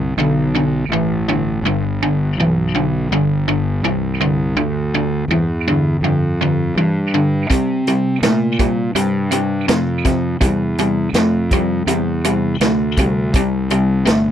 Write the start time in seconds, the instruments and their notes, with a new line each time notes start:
Already playing: fingered electric bass C2, overdriven electric guitar G2 D3
0.17 fingered electric bass B1, overdriven electric guitar G2 D3
0.55 overdriven electric guitar G2 D3
0.89 fingered electric bass A1, overdriven electric guitar G2
0.93 overdriven electric guitar E3
1.28 overdriven electric guitar G2 D3
1.62 fingered electric bass G1, overdriven electric guitar G2
1.67 overdriven electric guitar D3
2.03 overdriven electric guitar G2 D3
2.37 fingered electric bass B1, overdriven electric guitar G2 E3
2.75 overdriven electric guitar G2 D3
3.09 fingered electric bass G1, overdriven electric guitar G2 D3
3.48 overdriven electric guitar G2 D3
3.82 fingered electric bass C2, overdriven electric guitar G2 E3
4.21 overdriven electric guitar G2 D3
4.56 fingered electric bass D2, overdriven electric guitar G2 D3
4.94 overdriven electric guitar G2 D3
5.28 fingered electric bass E2, overdriven electric guitar G2 E3
5.68 overdriven electric guitar G2 D3
6.01 fingered electric bass F2, overdriven electric guitar G2 D3
6.41 overdriven electric guitar G2 D3
6.75 fingered electric bass G2, overdriven electric guitar G2 E3
7.14 overdriven electric guitar G2 D3
7.50 overdriven electric guitar C3 G3, fingered electric bass C3, kick, closed hi-hat
7.87 overdriven electric guitar C3 G3, closed hi-hat
8.22 fingered electric bass A#2, overdriven electric guitar C3 A3, snare, closed hi-hat
8.59 overdriven electric guitar C3 G3, kick, closed hi-hat
8.95 fingered electric bass G2, overdriven electric guitar C3 G3, closed hi-hat
9.31 overdriven electric guitar C3 G3, closed hi-hat
9.68 fingered electric bass F2, overdriven electric guitar C3 A3, snare, closed hi-hat
10.05 overdriven electric guitar C3 G3, kick, snare, closed hi-hat
10.40 fingered electric bass E2, overdriven electric guitar C3 G3, kick, closed hi-hat
10.78 overdriven electric guitar C3 G3, closed hi-hat
11.13 fingered electric bass F2, overdriven electric guitar C3 A3, snare, closed hi-hat
11.51 overdriven electric guitar C3 G3, kick, closed hi-hat
11.86 fingered electric bass E2, overdriven electric guitar C3 G3, closed hi-hat
12.24 overdriven electric guitar C3 G3, closed hi-hat
12.60 fingered electric bass D2, overdriven electric guitar C3 A3, snare, closed hi-hat
12.97 overdriven electric guitar C3 G3, kick, closed hi-hat
13.33 fingered electric bass C2, overdriven electric guitar C3 G3, kick, closed hi-hat
13.70 overdriven electric guitar C3 G3, closed hi-hat
14.05 fingered electric bass G1, overdriven electric guitar C3 A3, snare, closed hi-hat